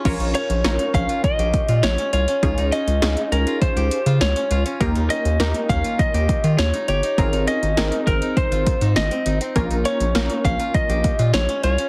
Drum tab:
CC |x---------------|----------------|----------------|----------------|
HH |xxxxxxxxxxxxxxxx|xxxxxxxxxxxxxxxx|xxxxxxxxxxxxxxxx|xxxxxxxxxxxxxxxx|
SD |----o-------o---|----o-------o---|----o-------o---|----o-------o---|
BD |o-----o-o-o-----|o-------o-------|o-----o-o-o-----|o-----o-o-o-----|

CC |----------------|
HH |xxxxxxxxxxxxxxxx|
SD |----o-------o---|
BD |o-----o-o-o-----|